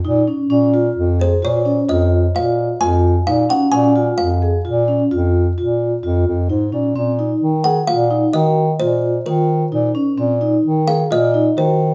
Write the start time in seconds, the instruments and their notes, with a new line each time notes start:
0.05 bass clarinet A#2, vibraphone D#4
0.28 vibraphone C#4
0.50 bass clarinet A#2, vibraphone C#4
0.74 vibraphone F4
0.97 bass clarinet F2
1.20 vibraphone G#4, kalimba C5
1.42 bass clarinet A#2, vibraphone F4, kalimba C#5
1.65 vibraphone C#4
1.89 bass clarinet F2, vibraphone F4, kalimba D#5
2.34 bass clarinet A#2, vibraphone F4, kalimba F5
2.80 bass clarinet F2, vibraphone F4, kalimba G#5
3.27 bass clarinet A#2, vibraphone D#4, kalimba F5
3.49 vibraphone C#4, kalimba F#5
3.72 bass clarinet A#2, vibraphone C#4, kalimba G#5
3.96 vibraphone F4
4.18 bass clarinet F2, kalimba F5
4.42 vibraphone G#4
4.65 bass clarinet A#2, vibraphone F4
4.88 vibraphone C#4
5.11 bass clarinet F2, vibraphone F4
5.57 bass clarinet A#2, vibraphone F4
6.03 bass clarinet F2, vibraphone F4
6.27 bass clarinet F2
6.49 bass clarinet G#2, vibraphone D#4
6.72 bass clarinet A#2, vibraphone C#4
6.96 bass clarinet A#2, vibraphone C4
7.19 vibraphone D#4
7.42 bass clarinet D#3
7.64 vibraphone G#4, kalimba F#5
7.87 bass clarinet A#2, vibraphone F4, kalimba F5
8.11 vibraphone D#4
8.33 bass clarinet D#3, vibraphone F#4, kalimba D#5
8.80 bass clarinet A#2, vibraphone F4, kalimba C5
9.25 bass clarinet D#3, vibraphone F4, kalimba A#4
9.72 bass clarinet A#2, vibraphone D#4
9.95 vibraphone C#4
10.18 bass clarinet A#2, vibraphone C4
10.41 vibraphone D#4
10.64 bass clarinet D#3
10.87 vibraphone G#4, kalimba F5
11.11 bass clarinet A#2, vibraphone F4, kalimba D#5
11.34 vibraphone D#4
11.57 bass clarinet D#3, vibraphone F#4, kalimba C5